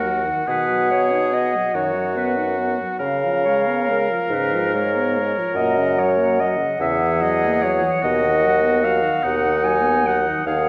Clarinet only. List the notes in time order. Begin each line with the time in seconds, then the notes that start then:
Already playing: A#4
0.49 B4
0.91 C#5
1.33 D#5
1.75 C#5
2.17 B4
3.45 C#5
3.90 A#4
4.33 B4
4.74 C#5
5.56 D#5
5.99 C#5
6.40 D#5
6.81 E5
7.22 D#5
7.63 C#5
8.04 D#5
8.84 F5
9.25 F#5
9.64 G#5
10.06 F#5
10.47 F5